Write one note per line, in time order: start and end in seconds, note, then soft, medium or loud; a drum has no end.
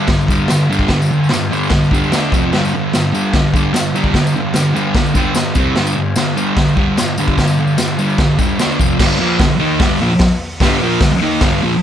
0.07 0.26 G2 medium
0.07 0.27 D3 medium
0.07 kick loud
0.07 snare loud
0.07 crash medium
0.21 tambourine soft
0.28 0.47 G2 medium
0.28 0.48 D3 medium
0.28 0.48 G3 medium
0.28 kick medium
0.28 tambourine medium
0.48 0.67 G2 medium
0.48 0.68 D3 medium
0.48 snare loud
0.48 tambourine loud
0.48 crash medium
0.69 0.88 G2 medium
0.69 0.89 D3 medium
0.69 0.89 G3 medium
0.69 tambourine medium
0.79 kick medium
0.88 1.08 G2 medium
0.88 kick medium
0.88 snare loud
0.88 crash medium
0.92 1.09 D3 medium
1.02 tambourine medium
1.11 1.28 G2 medium
1.11 1.29 D3 medium
1.11 tambourine soft
1.24 tambourine soft
1.29 1.49 G2 medium
1.29 1.49 D3 medium
1.29 snare loud
1.29 crash medium
1.33 tambourine medium
1.51 1.70 G2 medium
1.51 1.70 D3 loud
1.51 1.70 G3 loud
1.51 tambourine medium
1.63 tambourine soft
1.69 1.90 G2 medium
1.69 1.90 D3 medium
1.69 kick loud
1.69 snare loud
1.69 crash medium
1.84 tambourine soft
1.91 2.10 G2 medium
1.91 2.11 D3 medium
1.91 2.11 G3 medium
1.91 kick medium
1.91 tambourine medium
2.03 tambourine soft
2.12 2.31 D3 medium
2.12 2.31 A3 medium
2.12 2.32 D4 medium
2.12 snare loud
2.12 tambourine medium
2.12 crash medium
2.24 tambourine soft
2.32 2.51 F2 medium
2.32 2.52 C3 medium
2.32 2.52 F3 medium
2.32 kick loud
2.32 tambourine medium
2.53 2.71 G2 medium
2.53 2.72 D3 loud
2.53 2.72 G3 loud
2.53 snare loud
2.53 tambourine soft
2.53 crash medium
2.65 tambourine medium
2.74 2.91 G2 medium
2.74 2.91 D3 medium
2.93 3.11 G2 medium
2.93 3.12 D3 medium
2.93 snare loud
2.93 tambourine medium
2.93 crash medium
3.13 3.32 G2 medium
3.13 3.32 D3 medium
3.13 3.33 G3 medium
3.13 tambourine medium
3.33 3.52 G2 medium
3.33 3.52 D3 medium
3.33 kick loud
3.33 snare loud
3.33 crash medium
3.54 3.72 G2 medium
3.54 3.73 D3 medium
3.54 3.74 G3 medium
3.54 kick medium
3.54 tambourine medium
3.73 3.92 G2 medium
3.73 3.92 D3 medium
3.73 snare loud
3.73 tambourine loud
3.73 crash medium
3.94 4.13 G2 loud
3.94 4.13 D3 loud
3.94 4.14 G3 loud
3.94 tambourine medium
4.04 kick medium
4.14 4.32 G2 medium
4.14 4.33 D3 medium
4.14 kick loud
4.14 snare loud
4.14 tambourine soft
4.14 crash medium
4.27 tambourine medium
4.35 4.53 G2 medium
4.35 4.53 D3 medium
4.53 4.73 G2 medium
4.53 4.74 D3 medium
4.53 snare loud
4.53 tambourine medium
4.53 crash medium
4.74 4.94 G2 medium
4.74 4.94 D3 medium
4.74 4.95 G3 loud
4.74 tambourine medium
4.95 5.13 G2 medium
4.95 5.14 D3 medium
4.95 kick loud
4.95 snare loud
4.95 crash medium
5.06 tambourine soft
5.15 5.34 G2 medium
5.15 5.34 D3 medium
5.15 5.35 G3 medium
5.15 kick medium
5.15 tambourine medium
5.35 5.54 G2 medium
5.35 5.54 D3 medium
5.35 snare loud
5.35 tambourine loud
5.35 crash medium
5.55 5.75 C3 medium
5.55 5.75 G3 loud
5.55 5.76 C4 loud
5.55 kick loud
5.55 tambourine medium
5.75 5.95 G2 loud
5.75 5.95 D3 loud
5.75 5.96 G3 loud
5.75 snare loud
5.75 tambourine soft
5.75 crash medium
5.87 tambourine medium
5.96 6.14 G2 medium
5.96 6.15 D3 medium
6.16 6.35 G2 medium
6.16 6.35 D3 medium
6.16 snare loud
6.16 tambourine loud
6.16 crash medium
6.36 6.55 G2 medium
6.36 6.55 D3 medium
6.36 6.56 G3 loud
6.36 tambourine medium
6.56 6.75 G2 medium
6.56 6.75 D3 medium
6.56 kick loud
6.56 snare loud
6.56 crash medium
6.68 tambourine soft
6.77 6.96 G2 medium
6.77 6.96 D3 loud
6.77 6.97 G3 loud
6.77 kick medium
6.97 7.16 G2 medium
6.97 7.16 D3 medium
6.97 snare loud
6.97 tambourine loud
6.97 crash medium
7.17 7.37 G2 medium
7.17 7.37 D3 loud
7.17 7.38 G3 loud
7.17 tambourine medium
7.28 kick medium
7.38 7.56 G2 medium
7.38 7.57 D3 medium
7.38 kick medium
7.38 snare loud
7.38 tambourine soft
7.38 crash medium
7.48 tambourine medium
7.58 7.77 G2 medium
7.58 7.77 D3 medium
7.58 tambourine soft
7.67 tambourine soft
7.78 7.96 G2 medium
7.78 7.97 D3 medium
7.78 snare loud
7.78 tambourine loud
7.78 crash medium
7.89 tambourine soft
7.99 8.18 G2 medium
7.99 8.18 D3 medium
7.99 8.18 G3 loud
7.99 tambourine medium
8.10 tambourine soft
8.18 8.37 G2 medium
8.18 8.37 D3 medium
8.18 kick loud
8.18 snare loud
8.18 tambourine soft
8.18 crash medium
8.39 8.58 G2 medium
8.39 8.58 D3 medium
8.39 8.58 G3 medium
8.39 kick medium
8.39 tambourine medium
8.49 tambourine soft
8.59 8.78 D3 medium
8.59 8.78 A3 medium
8.59 8.79 D4 medium
8.59 snare loud
8.59 tambourine loud
8.59 crash medium
8.71 tambourine soft
8.79 8.98 F2 loud
8.79 8.98 C3 medium
8.79 8.99 F3 loud
8.79 kick loud
8.79 tambourine medium
8.90 tambourine soft
9.00 9.19 G2 loud
9.00 9.18 D3 loud
9.00 9.19 G3 loud
9.00 kick loud
9.00 snare loud
9.00 crash loud
9.19 9.39 A#2 medium
9.19 9.39 F3 loud
9.19 9.40 A#3 loud
9.39 9.49 G2 medium
9.39 9.51 D3 medium
9.39 kick loud
9.39 snare loud
9.39 open hi-hat medium
9.50 muted distorted electric guitar stroke medium
9.60 9.79 D#3 loud
9.60 9.79 A#3 medium
9.60 9.80 D#4 medium
9.80 9.99 G2 medium
9.80 10.00 D3 loud
9.80 10.00 G3 loud
9.80 kick loud
9.80 snare loud
9.80 open hi-hat medium
10.00 10.09 A#2 medium
10.00 10.10 F3 medium
10.19 kick loud
10.19 snare loud
10.19 open hi-hat medium
10.60 10.80 G2 medium
10.60 10.81 D3 loud
10.60 10.81 G3 loud
10.60 kick loud
10.60 snare loud
10.60 open hi-hat medium
10.81 11.00 A#2 medium
10.81 11.01 F3 loud
10.81 11.01 A#3 loud
11.00 11.11 G2 medium
11.00 11.11 D3 medium
11.00 kick loud
11.00 snare loud
11.00 open hi-hat medium
11.12 muted distorted electric guitar stroke medium
11.21 11.40 D#3 medium
11.21 11.41 A#3 loud
11.21 11.41 D#4 medium
11.40 11.61 G2 loud
11.40 11.61 D3 loud
11.40 11.62 G3 loud
11.40 kick loud
11.40 snare loud
11.40 open hi-hat medium
11.63 11.71 A#2 medium
11.63 11.72 F3 medium